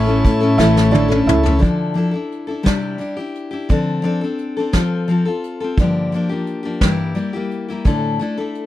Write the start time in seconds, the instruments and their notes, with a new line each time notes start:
Already playing: upright bass A1, upright piano C#4, harmonium E4 C#5 A5
0.06 steel-string acoustic guitar A3 C#4 E4 A4
0.24 upright bass A2, kick, ride
0.40 steel-string acoustic guitar A3 C#4 E4 A4
0.58 upright bass A1, steel-string acoustic guitar A2 E3 A3 C#4 E4 A4, upright piano E4, snare
0.77 snare
0.91 steel-string acoustic guitar A3 C#4 E4 A4, upright piano D4, high tom
1.08 steel-string acoustic guitar A3 C#4 E4 A4, mid tom
1.26 upright bass C#2, upright piano E4, mid tom
1.43 steel-string acoustic guitar A3 C#4 E4 A4, floor tom
1.59 steel-string acoustic guitar D3 F3 D4 E4 A4, kick, closed hi-hat
1.94 steel-string acoustic guitar F3 D4 E4 A4, closed hi-hat
2.11 steel-string acoustic guitar E4 A4
2.15 steel-string acoustic guitar D4
2.32 closed hi-hat
2.47 steel-string acoustic guitar D4 E4 A4
2.63 steel-string acoustic guitar C3 G3 D4 E4 G4, kick, snare, closed hi-hat
2.98 steel-string acoustic guitar G3 D4 E4 G4, closed hi-hat
3.17 steel-string acoustic guitar D4 E4 G4
3.35 closed hi-hat
3.51 steel-string acoustic guitar D4 E4 G4
3.69 steel-string acoustic guitar D3 F3 C4 D4 A4, kick, closed hi-hat
4.02 steel-string acoustic guitar F3 C4 D4 A4, closed hi-hat
4.21 steel-string acoustic guitar C4 D4 A4
4.38 closed hi-hat
4.57 steel-string acoustic guitar C4 D4 A4
4.73 steel-string acoustic guitar F3 C4 F4 A4, kick, snare, closed hi-hat
5.08 steel-string acoustic guitar F3 C4 F4 A4, closed hi-hat
5.25 steel-string acoustic guitar C4 F4 A4
5.44 closed hi-hat
5.60 steel-string acoustic guitar C4 F4 A4
5.78 steel-string acoustic guitar G2 D3 F3 A#3 D4 G4, kick, closed hi-hat
6.12 steel-string acoustic guitar F3 A#3 D4 G4, closed hi-hat
6.29 steel-string acoustic guitar F3 A#3 D4 G4
6.47 closed hi-hat
6.63 steel-string acoustic guitar F3 A#3 D4 G4
6.81 steel-string acoustic guitar G2 E3 G3 A#3 E4 G4, kick, snare, closed hi-hat
7.15 steel-string acoustic guitar G3 A#3 E4 G4, closed hi-hat
7.33 steel-string acoustic guitar G3 A#3 E4 G4
7.51 closed hi-hat
7.68 steel-string acoustic guitar G3 A#3 E4 G4
7.85 steel-string acoustic guitar A2 D3 A3 D4 E4 A4, kick, closed hi-hat
8.19 steel-string acoustic guitar A3 D4 E4 A4, closed hi-hat
8.37 steel-string acoustic guitar A3 D4 E4 A4
8.55 closed hi-hat